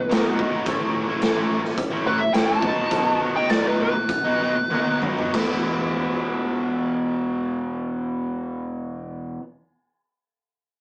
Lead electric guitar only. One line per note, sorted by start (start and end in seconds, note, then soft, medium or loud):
0.00 0.34 B4 medium
2.07 2.19 B4 medium
2.18 2.32 E5 medium
2.33 2.45 G5 medium
2.45 3.31 A5 medium
3.36 3.49 G5 medium
3.50 3.64 D5 medium
3.67 3.80 B4 medium
3.82 5.00 B4 medium